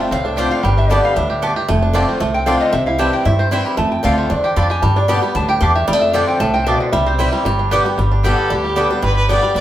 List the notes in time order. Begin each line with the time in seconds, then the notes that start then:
Already playing: D4
0.00 A3 C4 F4 E5
0.11 C2 A2 C4 F5
0.25 D4 A4
0.36 D3 A3 C4 F4 G4 C5 D5 A5
0.51 D4 F5
0.63 G1 G2 G3 G5
0.77 D4 E5
0.89 D3 G3 B3 G4 D5 A5
1.04 B3 F5
1.16 D2 A2 D4 E5
1.30 G4
1.42 G2 B3 D4 G4 D5 A5
1.56 G4
1.68 F1 F2 A3
1.82 D4
1.93 D3 A3 C4 F4 G4 D5 A5
2.09 C4
2.20 C2 A2 A3
2.34 C4 G5
2.46 D3 A3 C4 D4 F4 D5 F5 A5
2.60 D3 D#5
2.73 C2 C3 C4 E5
2.86 E4 F5
2.98 E3 G3 C4 E4 G4 C5 G5 A5
3.13 C4 G5
3.25 G2 E4 E5
3.39 C4 C5
3.51 E3 G3 C4 E4 C5 G5
3.65 G3 B5
3.77 F2 A3 A5
3.92 G5
4.03 D2 D3 A3 C4 F4 D5 F5 A5
4.18 C4 E5
4.30 E2 D4 D5
4.44 G4 G5
4.56 F2 C4 D4 F4 D5 A5 B5
4.70 G4 G#5
4.82 G2 G3 A5
4.96 D4 D5
5.08 D3 G3 B3 G4 D5 A5
5.22 B3 G4
5.35 D2 A2 D4 A5
5.49 G4 G5
5.61 E2 G2 B3 D4 G4 D5 F5 A5
5.75 G4 E5
5.88 F2 G3 D5
5.93 A3
6.01 D4 E5
6.13 D3 A3 C4 F4 G4 D5 F5 A5
6.27 C4 G5
6.40 C2 A2 A3 A5
6.54 C4 G5
6.66 B2 C4 D4 F4 D5 E5 A5
6.80 D3 D5
6.92 C2 C3 G3 E5
7.06 C4 C5
7.18 E3 G3 C4 E4 C5 G5
7.33 G3
7.45 G1 G2 G3
7.59 D4
7.71 D3 G3 B3 G4 D5 G5
7.85 B3 G4
7.98 G1 G2 G3
8.12 D4
8.23 D3 G3 B3 G4 A4 D5 G5
8.38 D4
8.50 D2 D3 B3 G4
8.64 G3
8.76 D3 G3 B3 G4 A4 D5 G5
8.90 B3 D4 G4
9.02 G1 G2 G3 B4
9.16 B4
9.29 D3 G3 B3 D4 G4 D5 G5
9.43 G3 B3 G4
9.55 D2 A2 B3 D5